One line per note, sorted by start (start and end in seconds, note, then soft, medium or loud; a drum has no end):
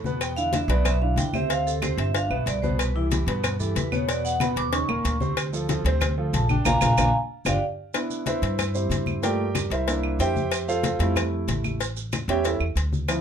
0.00 0.64 E2 medium
0.04 0.32 B2 medium
0.04 0.32 B3 medium
0.04 0.32 B4 medium
0.04 high conga medium
0.04 maracas soft
0.20 0.37 G5 medium
0.20 cowbell loud
0.20 high conga soft
0.20 claves medium
0.20 maracas medium
0.36 0.50 D3 medium
0.36 0.51 D4 medium
0.36 0.51 E4 medium
0.36 0.53 F5 loud
0.36 high conga soft
0.36 maracas medium
0.53 0.66 D3 medium
0.53 0.67 D4 medium
0.53 0.67 E4 medium
0.53 0.69 E5 medium
0.53 cowbell medium
0.53 high conga loud
0.53 maracas medium
0.68 1.14 B1 loud
0.68 0.96 B2 loud
0.68 0.96 B3 medium
0.68 0.96 B4 loud
0.68 0.85 D5 medium
0.68 cowbell medium
0.68 high conga soft
0.68 maracas soft
0.85 1.01 E5 medium
0.85 cowbell loud
0.85 high conga soft
0.85 low conga medium
0.85 claves medium
0.85 maracas medium
1.02 1.28 D3 medium
1.02 1.28 D4 medium
1.02 1.29 E4 medium
1.02 1.17 F5 medium
1.02 high conga soft
1.16 1.92 D2 loud
1.16 1.34 G5 loud
1.16 cowbell medium
1.16 high conga medium
1.16 maracas medium
1.33 1.47 C3 medium
1.33 1.48 C4 medium
1.33 1.48 C5 medium
1.33 1.50 E5 medium
1.33 high conga medium
1.33 claves medium
1.33 maracas soft
1.49 1.76 C3 medium
1.49 1.76 C4 medium
1.49 1.76 C5 medium
1.49 1.67 F5 loud
1.49 cowbell loud
1.49 maracas medium
1.66 1.82 A4 medium
1.66 high conga soft
1.66 maracas medium
1.81 2.08 C3 medium
1.81 2.09 C4 medium
1.81 2.09 C5 medium
1.81 1.99 C5 medium
1.81 cowbell medium
1.81 high conga medium
1.81 claves medium
1.81 maracas medium
1.97 2.28 G1 loud
1.97 2.15 E5 medium
1.97 cowbell medium
1.97 maracas soft
2.14 2.28 D3 medium
2.14 2.28 D4 medium
2.14 2.28 F4 medium
2.14 2.31 F5 medium
2.14 cowbell loud
2.14 high conga soft
2.14 maracas medium
2.30 2.46 B1 medium
2.30 2.57 B2 medium
2.30 2.57 B3 medium
2.30 2.57 B4 medium
2.30 2.46 E5 medium
2.30 high conga soft
2.30 claves medium
2.46 3.22 C2 medium
2.46 2.63 D5 medium
2.46 cowbell medium
2.46 high conga soft
2.46 maracas medium
2.62 2.90 B2 medium
2.62 2.90 B3 medium
2.62 2.90 B4 medium
2.62 2.78 C5 medium
2.62 high conga medium
2.62 maracas soft
2.79 2.95 B4 medium
2.79 cowbell loud
2.79 claves medium
2.79 maracas medium
2.95 3.08 E3 medium
2.95 3.05 E4 medium
2.95 3.09 E4 medium
2.95 3.09 G4 medium
2.95 high conga soft
3.12 3.25 E3 medium
3.12 3.25 E4 medium
3.12 3.25 G4 medium
3.12 cowbell medium
3.12 high conga loud
3.12 maracas medium
3.26 3.72 G2 medium
3.26 3.54 B2 medium
3.26 3.54 B3 medium
3.26 3.54 B4 medium
3.26 cowbell medium
3.26 high conga soft
3.26 maracas soft
3.44 cowbell loud
3.44 high conga soft
3.44 low conga medium
3.44 claves medium
3.44 maracas medium
3.60 3.86 E3 medium
3.60 3.86 E4 medium
3.60 3.87 G4 medium
3.60 3.76 A4 medium
3.60 high conga soft
3.60 low conga medium
3.60 maracas medium
3.75 4.51 E2 medium
3.75 3.92 B4 medium
3.75 cowbell medium
3.75 high conga medium
3.75 maracas medium
3.92 4.05 B2 medium
3.92 4.05 B3 medium
3.92 4.05 B4 medium
3.92 4.08 C#5 medium
3.92 high conga medium
3.92 claves medium
3.92 maracas soft
4.07 4.34 B2 medium
4.07 4.34 B3 medium
4.07 4.35 B4 medium
4.07 4.24 D5 medium
4.07 cowbell loud
4.07 maracas medium
4.24 4.40 F#5 loud
4.24 high conga soft
4.24 maracas medium
4.40 4.67 B2 medium
4.40 4.67 B3 medium
4.40 4.67 B4 medium
4.40 4.57 B5 medium
4.40 cowbell medium
4.40 high conga loud
4.40 claves medium
4.40 maracas medium
4.56 4.86 D#2 loud
4.56 4.73 D6 loud
4.56 cowbell medium
4.56 maracas soft
4.72 4.86 C#3 medium
4.72 4.86 C#4 medium
4.72 4.86 D#4 medium
4.72 5.33 C#6 loud
4.72 cowbell loud
4.72 high conga soft
4.72 maracas medium
4.88 5.04 D#2 medium
4.88 5.15 A#2 medium
4.88 5.15 A#3 medium
4.88 5.15 A#4 medium
4.88 high conga soft
4.88 claves medium
5.05 5.80 D2 loud
5.05 cowbell medium
5.05 high conga soft
5.05 maracas medium
5.20 5.47 C3 medium
5.20 5.47 C4 medium
5.20 5.47 C5 medium
5.20 high conga medium
5.20 maracas soft
5.36 cowbell loud
5.36 high conga soft
5.36 claves medium
5.36 maracas medium
5.53 5.66 F3 medium
5.53 5.66 F4 medium
5.53 5.67 A4 medium
5.53 high conga soft
5.53 maracas medium
5.69 5.83 F3 medium
5.69 5.83 F4 medium
5.69 5.83 A4 medium
5.69 cowbell medium
5.69 high conga loud
5.69 maracas medium
5.85 6.30 D2 loud
5.85 6.12 C3 medium
5.85 6.12 C4 medium
5.85 6.12 C5 loud
5.85 cowbell medium
5.85 high conga soft
5.85 maracas soft
6.01 cowbell loud
6.01 high conga soft
6.01 low conga medium
6.01 claves medium
6.01 maracas medium
6.18 6.44 F3 medium
6.18 6.44 F4 medium
6.18 6.44 A4 medium
6.18 high conga soft
6.33 6.63 A#1 loud
6.33 6.50 A5 loud
6.33 cowbell medium
6.33 high conga medium
6.33 maracas medium
6.49 6.63 D3 medium
6.49 6.63 D4 loud
6.49 6.63 D5 medium
6.49 6.66 G5 medium
6.49 high conga medium
6.49 claves medium
6.49 maracas soft
6.65 6.77 A#1 medium
6.65 6.76 A#3 loud
6.65 6.76 D4 loud
6.65 6.76 F4 loud
6.65 6.76 F5 loud
6.65 6.76 G#5 loud
6.65 6.76 A#5 loud
6.65 cowbell medium
6.65 high conga loud
6.65 claves loud
6.65 maracas loud
6.81 6.93 A#1 loud
6.81 6.92 A#3 loud
6.81 6.92 D4 medium
6.81 6.92 F4 loud
6.81 6.92 F5 loud
6.81 6.92 G#5 medium
6.81 6.92 A#5 loud
6.81 cowbell loud
6.81 high conga loud
6.81 claves loud
6.81 maracas loud
6.97 7.10 A#1 loud
6.97 7.08 A#3 loud
6.97 7.08 D4 loud
6.97 7.08 F4 loud
6.97 7.08 F5 medium
6.97 7.09 G#5 loud
6.97 7.08 A#5 medium
6.97 cowbell loud
6.97 high conga loud
6.97 claves loud
6.97 maracas loud
7.45 7.58 G1 loud
7.45 7.57 D4 medium
7.45 7.57 F4 medium
7.45 7.57 G4 medium
7.45 7.57 D5 medium
7.45 7.57 F5 medium
7.45 7.57 G5 medium
7.45 cowbell loud
7.45 high conga loud
7.45 claves loud
7.45 maracas loud
7.94 8.40 B3 medium
7.94 8.40 D4 soft
7.94 8.25 E4 medium
7.94 cowbell loud
7.94 high conga soft
7.94 claves medium
7.94 maracas medium
8.10 high conga soft
8.10 maracas medium
8.26 8.72 E4 medium
8.26 8.72 B4 medium
8.26 8.72 C5 medium
8.26 8.72 E5 medium
8.26 cowbell medium
8.26 high conga medium
8.26 maracas medium
8.42 8.87 G2 loud
8.42 cowbell medium
8.42 maracas soft
8.59 cowbell loud
8.59 high conga soft
8.59 low conga medium
8.59 claves medium
8.59 maracas medium
8.74 9.20 C4 soft
8.74 9.20 E4 soft
8.74 9.20 G4 soft
8.74 9.20 C5 medium
8.74 high conga soft
8.74 maracas medium
8.90 9.65 G2 medium
8.90 cowbell medium
8.90 high conga medium
8.90 maracas medium
9.06 high conga medium
9.06 claves medium
9.06 maracas soft
9.22 9.44 A3 medium
9.22 9.44 A#3 soft
9.22 9.45 F4 medium
9.22 9.68 G4 medium
9.22 9.68 A#4 medium
9.22 9.68 D5 medium
9.22 9.68 G5 medium
9.22 cowbell loud
9.22 high conga soft
9.22 maracas medium
9.39 high conga soft
9.55 cowbell medium
9.55 high conga loud
9.55 claves medium
9.55 maracas medium
9.70 10.16 C2 loud
9.70 9.87 E4 soft
9.70 10.17 A#4 medium
9.70 10.17 C5 medium
9.70 10.17 E5 medium
9.70 cowbell medium
9.70 maracas soft
9.88 10.34 A#3 medium
9.88 10.34 D4 medium
9.88 10.34 E4 medium
9.88 cowbell loud
9.88 high conga soft
9.88 maracas medium
10.03 high conga soft
10.03 claves medium
10.19 10.94 F2 medium
10.19 10.65 G4 medium
10.19 10.65 C5 medium
10.19 10.65 E5 medium
10.19 10.65 G5 loud
10.19 cowbell medium
10.19 high conga soft
10.19 maracas medium
10.36 high conga medium
10.36 maracas soft
10.52 cowbell loud
10.52 claves medium
10.52 maracas medium
10.68 11.13 F4 medium
10.68 11.13 A4 medium
10.68 11.13 C5 medium
10.68 11.13 F5 medium
10.68 high conga soft
10.68 maracas medium
10.83 cowbell medium
10.83 high conga loud
10.83 maracas medium
10.99 11.44 F2 loud
10.99 11.76 G3 medium
10.99 11.77 A3 medium
10.99 11.77 E4 medium
10.99 cowbell medium
10.99 high conga soft
10.99 maracas soft
11.16 cowbell loud
11.16 high conga soft
11.16 low conga medium
11.16 claves medium
11.16 maracas medium
11.32 high conga soft
11.48 12.23 A1 loud
11.48 cowbell medium
11.48 high conga medium
11.48 maracas medium
11.64 high conga medium
11.64 claves medium
11.64 maracas soft
11.80 cowbell medium
11.80 high conga soft
11.80 maracas medium
11.97 high conga soft
11.97 maracas medium
12.13 cowbell medium
12.13 high conga medium
12.13 claves medium
12.13 maracas medium
12.28 12.58 E2 loud
12.28 12.50 G3 medium
12.28 12.50 B3 medium
12.28 12.50 C#4 medium
12.28 12.45 G4 medium
12.28 12.44 C#5 medium
12.28 12.44 E5 medium
12.28 12.44 G5 medium
12.28 cowbell medium
12.28 maracas soft
12.44 12.61 E4 medium
12.44 12.61 A4 medium
12.44 12.61 C#5 medium
12.44 12.61 E5 medium
12.44 cowbell loud
12.44 high conga soft
12.44 maracas medium
12.60 12.75 E2 medium
12.60 high conga soft
12.60 claves medium
12.75 13.21 D2 medium
12.75 cowbell medium
12.75 high conga soft
12.75 maracas medium
12.92 high conga medium
12.92 maracas soft
13.08 13.21 F3 medium
13.08 13.21 C4 medium
13.08 13.21 E4 medium
13.08 cowbell loud
13.08 high conga soft
13.08 claves medium
13.08 maracas medium